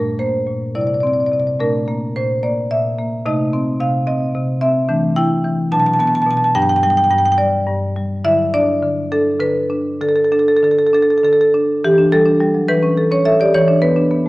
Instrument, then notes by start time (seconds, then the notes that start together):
marimba
Already playing: A#2 A3 D4 A#4
0.19 A#3 C5
0.47 A#2
0.75 C3 G3 E4 D5
0.81 D5
0.87 D5
0.94 D5
1.00 C4 D5
1.07 D5
1.13 D5
1.20 D5
1.26 D5
1.31 C3 D5
1.40 D5
1.47 D5
1.60 A#2 A3 D4 A#4
1.88 A#3
2.16 A#2 C5
2.43 A#3 D5
2.71 A#2 E5
2.98 A#3
3.26 C3 A3 D#4 D#5
3.53 C4
3.80 C3 F5
4.07 C4 D#5
4.35 C3
4.61 C4 E5
4.88 E3 A3 D4
5.16 E4 G5
5.44 E3
5.72 B2 F#3 D4 A5
5.80 A5
5.87 A5
5.94 A5
5.99 B3 A5
6.07 A5
6.15 A5
6.22 A5
6.26 B2
6.31 A5
6.37 A5
6.44 A5
6.55 G2 F#3 D4 G5
6.62 G5
6.69 G5
6.76 G5
6.83 G3 G5
6.90 G5
6.97 G5
7.04 G5
7.10 G2 G5
7.18 G5
7.26 G5
7.32 G5
7.38 G3 D5
7.67 G2
7.96 G3
8.25 D3 F#3 E4 E5
8.54 D4 D5
8.83 D3
9.12 D4 A4
9.40 D3 B4
9.70 D4
10.01 D3 A4
10.09 A4
10.16 A4
10.24 A4
10.32 D4 A4
10.39 A4
10.48 A4
10.57 A4
10.63 D3 A4
10.71 A4
10.79 A4
10.87 A4
10.93 D4 A4
11.02 A4
11.10 A4
11.18 A4
11.23 D3 A4
11.33 A4
11.41 A4
11.54 D4
11.84 E3 G4
11.98 D4
12.12 G3 A4
12.26 D4
12.40 G3
12.55 F#3
12.68 E3 B4
12.83 C#4
12.98 A4
13.11 C#4 C#5
13.25 A4 E5
13.40 G4 D5
13.55 E3 C#5
13.68 D4
13.82 B3 B4
13.96 D4
14.11 B3